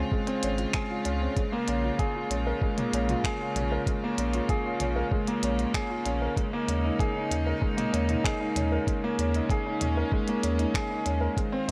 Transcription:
Already playing: C#3 G#3 C4 C#4 F4 G#4 C5
0.12 G#3, kick
0.27 C4, closed hi-hat
0.43 G#1 C#4, closed hi-hat
0.58 F4, closed hi-hat
0.73 G#4, finger snap, kick, closed hi-hat
0.90 F4
1.05 C#2 C#4, closed hi-hat
1.21 C4
1.36 G#3 A#3, kick, closed hi-hat
1.52 A#3
1.68 A#1 C#4, closed hi-hat
1.84 F4
1.99 G#4, kick, closed hi-hat
2.15 F4
2.30 A#1 C#4, closed hi-hat
2.47 A#4
2.62 G#3, kick
2.78 A#3, closed hi-hat, mid tom
2.93 A#1 C#4, closed hi-hat
3.09 F4, closed hi-hat, mid tom
3.24 G#4, finger snap, kick, closed hi-hat
3.41 F4
3.55 A#1 C#4, closed hi-hat, mid tom
3.72 A#4
3.87 G#3, kick, closed hi-hat
4.04 A#3
4.18 A#1 C#4, closed hi-hat
4.34 F4, closed hi-hat
4.49 G#4, kick, closed hi-hat
4.66 F4
4.80 A#1 C#4, closed hi-hat, mid tom
4.96 A#4
5.11 G#3, kick
5.27 A#3, closed hi-hat
5.43 A#1 C#4, closed hi-hat
5.59 F4, closed hi-hat
5.74 G#4, finger snap, kick, closed hi-hat
5.90 F4
6.05 A#1 C#4, closed hi-hat
6.22 A#4
6.36 G#3 D#4, kick, closed hi-hat
6.53 A#3
6.68 D#2 C#4, closed hi-hat
6.84 D#4
6.99 G#4, kick, closed hi-hat
7.16 D#4
7.30 D#2 C#4, closed hi-hat
7.47 A#4
7.61 G#3, kick
7.77 A#3, closed hi-hat, mid tom
7.93 D#2 C#4, closed hi-hat
8.08 D#4, closed hi-hat, mid tom
8.24 G#4, finger snap, kick, closed hi-hat
8.40 D#4
8.56 D#2 C#4, closed hi-hat, mid tom
8.72 A#4
8.87 G#3 C#4, kick, closed hi-hat
9.04 A#3
9.18 D#2 C#4, closed hi-hat
9.34 D#4, closed hi-hat
9.50 G#4, kick, closed hi-hat
9.66 D#4
9.81 D#2 C#4, closed hi-hat, mid tom
9.97 A#4
10.12 G#3, kick
10.28 A#3, closed hi-hat
10.43 D#2 C#4, closed hi-hat
10.59 D#4, closed hi-hat
10.74 G#4, finger snap, kick, closed hi-hat
10.90 D#4
11.05 D#2 C#4, closed hi-hat
11.21 A#4
11.36 D#3 G#3 F4 C5, kick, closed hi-hat
11.52 C4

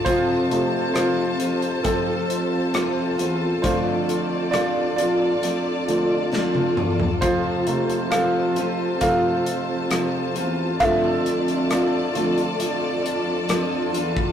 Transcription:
Already playing: A4 A5
0.05 F2 C3 F3 A3 C4 F4 C5, kick, closed hi-hat
0.50 C3 F3 A3, closed hi-hat
0.94 F2 C3 F3 A3 C4 F4 C5, cross-stick, closed hi-hat
1.39 F2 F3 A3 C4 F4, closed hi-hat
1.62 closed hi-hat
1.83 F2 F3 A3 C4 F4 A4, kick, closed hi-hat
2.30 closed hi-hat
2.73 F2 C3 F3 A3 C4 F4, cross-stick, closed hi-hat
3.18 E2 A3 C4 F4, closed hi-hat
3.62 F2 D3 F3 A3 D4 F4 C5 D5, kick, closed hi-hat
4.09 closed hi-hat
4.51 F3 A3 D4 F4 D5, cross-stick, closed hi-hat
4.96 F2 A3 D4 F4 D5, closed hi-hat
5.42 F2 F3 A3 D4 F4, closed hi-hat
5.88 D3 F3 A3, closed hi-hat
6.32 F3 A3 D4 F4, snare
6.55 high tom
6.77 E2 A3 D4 F4, mid tom
7.00 floor tom
7.21 F2 C3 F3 A3 C4 F4 C5 A5, kick, closed hi-hat
7.67 C3 F3 A3, closed hi-hat
7.89 closed hi-hat
8.11 F2 C3 F3 A3 C4 F4 A4 F5, cross-stick, closed hi-hat
8.55 F2 F3 A3 C4 F4, closed hi-hat
9.00 F2 C3 F3 A3 C4 F4 A4 F5, kick, closed hi-hat
9.46 closed hi-hat
9.90 F2 C3 F3 A3 C4 F4, cross-stick, closed hi-hat
10.35 E2 A3 C4 F4, closed hi-hat
10.80 F2 D3 F3 A3 D4 F4 A4 D5 E5, kick, closed hi-hat
11.26 closed hi-hat
11.48 closed hi-hat
11.70 F3 A3 D4 F4 D5, cross-stick, closed hi-hat
12.14 F2 D3 F3 A3 D4 F4, closed hi-hat
12.38 closed hi-hat
12.59 F2 F3 A3 D4 F4, closed hi-hat
13.06 closed hi-hat
13.49 F3 A3 D4 F4, cross-stick, closed hi-hat
13.93 E2 A3 D4 F4, closed hi-hat
14.17 kick

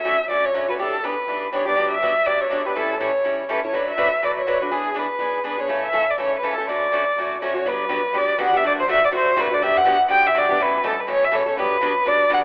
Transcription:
Already playing: E5
0.04 B1 D3 F#3 A3 C#4 F#4
0.28 C#2 D3 F#3 A3 C#4 F#4 D5
0.45 C#5
0.54 D2 D3 F#3 A3 C#4 F#4
0.68 A3 C#4 F#4 B4
0.78 E2 E3 B3 D4 G4 A4
1.03 E3 B3 D4 G4 B4
1.28 B1 E3 B3 D4 G4
1.53 E3 B3 D4 G4 C#5
1.65 B3 D4 G4 D5
1.75 G2 D3 F#3 B3 D4 G4
1.91 E5
2.02 D3 F#3 B3 D4 G4
2.25 D2 D3 F#3 B3 D4 G4 D5
2.41 C#5
2.50 D3 F#3 B3 D4 G4
2.65 B3 D4 G4 B4
2.75 A2 E3 G3 C#4 E4 A4
3.00 E3 G3 C#4 E4 A4 C#5
3.24 E2 E3 G3 C#4 E4 A4
3.49 E3 G3 C#4 E4 A4 B4
3.63 C#4 E4 A4 C#5
3.73 D2 D3 F#3 A3 D4 F#4 B4
3.90 E5
3.97 D3 F#3 A3 D4 F#4 B4
4.22 A1 D3 F#3 A3 D4 F#4 B4 D5
4.39 C#5
4.47 D3 F#3 A3 D4 F#4 B4
4.60 A3 D4 F#4 B4
4.71 E2 E3 B3 D4 G#4
4.94 E3 B3 D4 G#4 B4
5.19 B1 E3 B3 D4 G#4
5.44 E3 B3 D4 G#4 B4
5.58 B3 D4 G#4 C#5
5.68 A1 C#3 E3 A3 C#4 A4
5.86 E5
5.92 A1 C#3 E3 A3 C#4 A4
6.10 D5
6.18 B1 C#3 E3 A3 C#4 A4 C#5
6.39 C#2 B4
6.43 C#3 E3 A3 C#4 A4
6.54 A4
6.58 A3 C#4 A4
6.67 D2 D3 F#3 A3 C#4 F#4 D5
6.92 D3 F#3 A3 C#4 F#4
7.17 A1 D3 F#3 A3 C#4 F#4
7.42 D3 F#3 A3 C#4 F#4 C#5
7.54 A3 C#4 F#4
7.65 G2 D3 F#3 B3 D4 G4 B4
7.89 F#2 D3 F#3 B3 D4 G4
8.13 E2 D3 F#3 B3 D4 G4
8.17 D5
8.38 D2 D3 F#3 B3 D4 G4 F#5
8.53 B3 D4 G4 E5
8.63 F#2 C3 F#3 A3 D4 F#4 D5
8.80 C5
8.88 B1 C3 F#3 A3 D4 F#4 E5
9.05 D5
9.11 A1 C3 F#3 A3 D4 F#4
9.16 C5
9.26 muted upright bass stroke
9.36 F#1 C3 F#3 A3 D4 F#4 B4
9.51 A3 D4 F#4 D5
9.60 G1 D3 F#3 B3 D4 G4 E5
9.75 F#5, muted upright bass stroke
9.84 A1 D3 F#3 B3 D4 G4
9.99 muted upright bass stroke
10.08 B1 D3 F#3 B3 D4 G4 G5
10.27 E5
10.34 D2 D3 F#3 B3 D4 G4 D5
10.49 B3 D4 G4
10.59 A2 B2 E3 A3 C#4 A4 B4
10.83 G2 B2 E3 A3 C#4 A4
11.00 B4
11.07 F#2 B2 E3 A3 C#4 A4 C#5
11.24 E5
11.31 E2 B2 E3 A3 C#4 A4 C#5
11.46 A3 C#4 A4
11.57 G2 D3 F#3 B3 D4 G4 B4
11.71 muted upright bass stroke
11.81 F#2 D3 F#3 B3 D4 G4
12.05 E2 D3 F#3 B3 D4 G4 D5
12.29 D2 D3 F#3 B3 D4 G4 F#5

